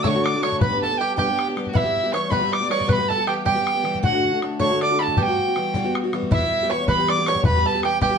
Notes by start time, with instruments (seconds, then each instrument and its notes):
0.03 steel-string acoustic guitar D2 A2 D3 A3 D4 F#4, five-string banjo C#5, fiddle C#5, tin whistle E6, bodhran
0.07 tin whistle C#6
0.15 steel-string acoustic guitar D3 A3 D4 F#4
0.24 five-string banjo D5, fiddle D5, tin whistle D6, bodhran
0.34 steel-string acoustic guitar D3 A3 D4 F#4
0.42 steel-string acoustic guitar D3 A3 D4 F#4, five-string banjo C#5, fiddle C#5, tin whistle C#6, bodhran
0.52 bodhran
0.60 steel-string acoustic guitar G3 B3 D4 G4, five-string banjo B4, fiddle B4, tin whistle B5, bodhran
0.71 steel-string acoustic guitar B3 D4 G4
0.81 fiddle A4, five-string banjo A4, tin whistle A5, bodhran
0.90 steel-string acoustic guitar B3 D4 G4
0.98 steel-string acoustic guitar G3 B3 D4 G4, fiddle G4, five-string banjo G4, tin whistle G5
1.16 steel-string acoustic guitar G3 B3 D4 G4, fiddle G4, five-string banjo G4, tin whistle G5, bodhran
1.29 steel-string acoustic guitar B3 D4 G4
1.39 bodhran
1.48 steel-string acoustic guitar B3 D4 G4
1.56 steel-string acoustic guitar G3 B3 D4 G4, bodhran
1.66 fiddle F#4, bodhran
1.73 steel-string acoustic guitar E3 G3 B3 G4, fiddle E4, five-string banjo E4, tin whistle E5 F#5, bodhran
1.84 steel-string acoustic guitar G3 B3 G4
1.96 bodhran
2.04 steel-string acoustic guitar G3 B3 G4
2.12 steel-string acoustic guitar E3 G3 B3 G4, five-string banjo C#5, fiddle C#5, tin whistle C#6, bodhran
2.30 steel-string acoustic guitar E3 G3 B3 G4, five-string banjo B4, fiddle B4, tin whistle B5, bodhran
2.41 steel-string acoustic guitar G3 B3 G4
2.46 fiddle E5
2.52 fiddle D5, five-string banjo D5, tin whistle D6, bodhran
2.61 steel-string acoustic guitar G3 B3 G4
2.69 steel-string acoustic guitar E3 G3 B3 G4, five-string banjo C#5, tin whistle C#6, bodhran
2.81 bodhran
2.87 steel-string acoustic guitar E3 G3 B3 G4, five-string banjo B4, fiddle B4, tin whistle C#6, bodhran
2.92 tin whistle B5
2.98 steel-string acoustic guitar G3 B3 G4
3.08 five-string banjo A4, fiddle A4, tin whistle A5, bodhran
3.18 steel-string acoustic guitar G3 B3 G4
3.27 steel-string acoustic guitar E3 G3 B3 G4, five-string banjo G4, fiddle G4, tin whistle G5, bodhran
3.45 steel-string acoustic guitar E3 G3 B3 G4, five-string banjo G4, fiddle G4, tin whistle G5, bodhran
3.55 steel-string acoustic guitar G3 B3 G4
3.67 bodhran
3.75 steel-string acoustic guitar G3 B3 G4
3.84 steel-string acoustic guitar E3 G3 B3 G4, bodhran
3.95 bodhran
4.03 steel-string acoustic guitar D2 A2 D3 A3 D4 F#4, five-string banjo F#4, fiddle F#4, tin whistle F#5, bodhran
4.12 steel-string acoustic guitar D3 A3 D4 F#4
4.24 bodhran
4.32 steel-string acoustic guitar D3 A3 D4 F#4
4.41 steel-string acoustic guitar D3 A3 D4 F#4, bodhran
4.60 steel-string acoustic guitar D2 A2 D3 A3 D4 F#4, five-string banjo C#5, fiddle C#5, tin whistle C#6, bodhran
4.71 steel-string acoustic guitar D3 A3 D4 F#4
4.81 fiddle D5, five-string banjo D5, tin whistle D6, bodhran
4.91 steel-string acoustic guitar D3 A3 D4 F#4
4.99 steel-string acoustic guitar D3 A3 D4 F#4, fiddle A4, five-string banjo A4, tin whistle A5 B5, bodhran
5.08 bodhran
5.17 steel-string acoustic guitar E3 G3 B3 F#4, five-string banjo G4, fiddle G4, tin whistle A5, bodhran
5.23 tin whistle G5
5.28 steel-string acoustic guitar G3 B3 F#4
5.38 bodhran
5.48 steel-string acoustic guitar G3 B3 F#4
5.56 steel-string acoustic guitar E3 G3 B3 F#4, bodhran
5.74 steel-string acoustic guitar E3 G3 B3 F#4, bodhran
5.84 steel-string acoustic guitar G3 B3 F#4
5.95 bodhran
6.04 steel-string acoustic guitar G3 B3 F#4
6.13 steel-string acoustic guitar E3 G3 B3 F#4, bodhran
6.23 bodhran
6.31 upright bass E2, steel-string acoustic guitar E3 G3 B3 G4, fiddle E4, five-string banjo E4, tin whistle E5, bodhran
6.42 steel-string acoustic guitar G3 B3 G4
6.52 bodhran
6.63 steel-string acoustic guitar G3 B3 G4
6.70 steel-string acoustic guitar E3 G3 B3 G4, five-string banjo C#5, fiddle C#5, tin whistle C#6
6.88 upright bass E3, steel-string acoustic guitar E3 G3 B3 G4, five-string banjo B4, fiddle B4, tin whistle B5, bodhran
6.99 steel-string acoustic guitar G3 B3 G4
7.08 five-string banjo D5, fiddle D5, tin whistle D6, bodhran
7.19 steel-string acoustic guitar G3 B3 G4
7.26 steel-string acoustic guitar E3 G3 B3 G4, five-string banjo C#5, tin whistle C#6, bodhran
7.35 fiddle C#5, bodhran
7.44 upright bass E2, steel-string acoustic guitar E3 G3 B3 G4, fiddle B4, five-string banjo B4, tin whistle B5, bodhran
7.57 steel-string acoustic guitar G3 B3 G4
7.66 five-string banjo A4, tin whistle A5, bodhran
7.75 steel-string acoustic guitar G3 B3 G4
7.82 steel-string acoustic guitar E3 G3 B3 G4, fiddle G4, five-string banjo G4, tin whistle G5, bodhran
8.00 steel-string acoustic guitar E3 G3 B3 G4, upright bass E3, fiddle G4, five-string banjo G4, tin whistle G5, bodhran
8.11 steel-string acoustic guitar G3 B3 G4